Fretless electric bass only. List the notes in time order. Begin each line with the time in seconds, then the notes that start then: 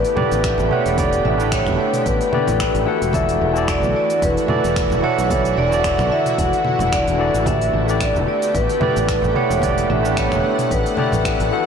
0.32 A1
0.59 A1
0.86 E1
1.25 A1
1.67 E1
2.06 A1
2.48 A1
2.74 A1
3.02 E1
3.41 E1
3.83 B1
4.22 E1
4.64 E1
4.91 E1
5.18 B1
5.57 E1
5.99 B1
6.38 E1
6.80 E1
7.07 E1
7.34 A1
7.73 A1
8.15 E1
8.55 A1
8.96 A1
9.23 A1
9.50 E1
9.90 A1
10.32 E1
10.71 A1
11.13 A1
11.40 A1